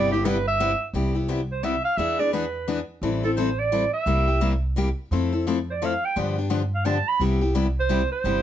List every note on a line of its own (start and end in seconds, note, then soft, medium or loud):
0.00 0.73 G1 loud
0.00 0.11 C3 medium
0.00 0.11 G3 medium
0.00 0.11 B3 medium
0.00 0.12 E4 medium
0.00 0.11 G4 medium
0.00 0.11 D5 loud
0.12 0.24 B3 medium
0.12 0.24 E4 medium
0.12 0.26 G4 medium
0.12 0.25 G4 medium
0.25 0.36 C3 loud
0.25 0.36 G3 loud
0.25 0.36 B3 loud
0.25 0.36 E4 loud
0.25 0.37 G4 loud
0.25 0.46 B4 medium
0.47 0.85 E5 loud
0.60 0.71 C3 medium
0.60 0.71 G3 loud
0.60 0.71 B3 loud
0.60 0.71 E4 loud
0.60 0.71 G4 loud
0.93 1.77 C2 medium
0.93 1.15 C3 medium
0.93 1.15 G3 medium
0.93 1.15 B3 medium
0.93 1.14 E4 medium
0.93 1.13 G4 medium
1.15 1.28 B3 soft
1.15 1.28 E4 soft
1.15 1.28 G4 medium
1.28 1.40 C3 medium
1.28 1.40 G3 medium
1.28 1.40 B3 medium
1.28 1.40 E4 medium
1.28 1.40 G4 medium
1.52 1.65 C5 medium
1.63 1.74 C3 medium
1.63 1.74 G3 medium
1.63 1.75 B3 medium
1.63 1.75 E4 medium
1.63 1.75 G4 medium
1.63 1.84 E5 medium
1.85 1.99 F5 loud
1.97 2.81 E2 medium
1.97 2.19 E3 medium
1.97 2.19 B3 medium
1.97 2.19 D4 medium
1.97 2.18 G#4 medium
1.97 2.21 E5 medium
2.19 2.32 B3 soft
2.19 2.32 D4 medium
2.19 2.32 G#4 medium
2.19 2.32 D5 medium
2.32 2.44 E3 medium
2.32 2.44 B3 medium
2.32 2.44 D4 medium
2.32 2.45 G#4 loud
2.32 2.85 B4 medium
2.68 2.79 E3 medium
2.68 2.79 B3 medium
2.68 2.79 D4 medium
2.68 2.79 G#4 medium
3.02 3.85 A1 medium
3.02 3.23 E3 medium
3.02 3.23 G3 medium
3.02 3.23 C4 medium
3.02 3.23 E4 medium
3.02 3.22 A4 medium
3.23 3.36 C4 soft
3.23 3.37 E4 soft
3.23 3.37 A4 medium
3.23 3.31 A4 medium
3.36 3.48 E3 medium
3.36 3.48 G3 medium
3.36 3.48 C4 medium
3.36 3.49 E4 medium
3.36 3.49 A4 medium
3.36 3.61 C5 medium
3.59 3.93 D5 loud
3.72 3.83 E3 medium
3.72 3.83 G3 medium
3.72 3.83 C4 medium
3.72 3.83 E4 medium
3.72 3.84 A4 medium
3.93 4.59 E5 loud
4.06 4.90 C2 medium
4.06 4.27 C3 medium
4.06 4.27 G3 medium
4.06 4.27 A#3 medium
4.06 4.27 E4 medium
4.06 4.26 G4 medium
4.27 4.40 A#3 soft
4.27 4.40 E4 soft
4.27 4.40 G4 medium
4.41 4.52 C3 medium
4.41 4.52 G3 medium
4.41 4.52 A#3 medium
4.41 4.53 E4 medium
4.41 4.53 G4 medium
4.76 4.87 C3 medium
4.76 4.88 G3 medium
4.76 4.88 A#3 medium
4.76 4.88 E4 medium
4.76 4.88 G4 medium
5.11 5.95 F2 medium
5.11 5.32 F3 medium
5.11 5.32 A3 medium
5.11 5.32 C4 medium
5.11 5.32 E4 medium
5.11 5.31 A4 medium
5.33 5.46 C4 soft
5.33 5.46 E4 medium
5.33 5.46 A4 medium
5.47 5.57 F3 medium
5.47 5.58 A3 medium
5.47 5.58 C4 loud
5.47 5.58 E4 medium
5.47 5.58 A4 medium
5.70 5.73 C5 medium
5.70 5.86 D5 medium
5.82 5.92 F3 medium
5.82 5.93 A3 medium
5.82 5.93 C4 medium
5.82 5.93 E4 loud
5.82 5.93 A4 medium
5.82 6.06 F5 medium
6.05 6.17 G5 medium
6.16 7.00 G2 medium
6.16 6.36 D3 medium
6.16 6.37 F3 medium
6.16 6.37 B3 medium
6.16 6.37 D4 medium
6.16 6.37 G4 medium
6.38 6.49 B3 soft
6.38 6.49 D4 medium
6.38 6.50 G4 medium
6.50 6.61 D3 medium
6.50 6.61 F3 medium
6.50 6.61 B3 medium
6.50 6.62 D4 medium
6.50 6.62 G4 medium
6.75 6.87 F5 medium
6.85 6.96 D3 medium
6.85 6.96 F3 medium
6.85 6.96 B3 medium
6.85 6.97 D4 medium
6.85 6.97 G4 medium
6.85 7.10 A5 loud
7.08 7.21 B5 loud
7.20 8.03 C2 medium
7.20 7.41 C3 medium
7.20 7.41 G3 medium
7.20 7.41 B3 medium
7.20 7.41 E4 medium
7.20 7.40 G4 medium
7.41 7.54 B3 soft
7.41 7.54 E4 soft
7.41 7.54 G4 medium
7.55 7.66 C3 medium
7.55 7.66 G3 medium
7.55 7.66 B3 medium
7.55 7.66 E4 loud
7.55 7.66 G4 medium
7.80 8.09 C5 loud
7.89 8.00 C3 medium
7.89 8.01 G3 medium
7.89 8.01 B3 medium
7.89 8.01 E4 loud
7.89 8.01 G4 medium
8.12 8.42 C5 loud
8.24 8.42 G1 medium
8.24 8.42 C3 medium
8.24 8.42 G3 medium
8.24 8.42 B3 medium
8.24 8.42 E4 medium
8.24 8.42 G4 medium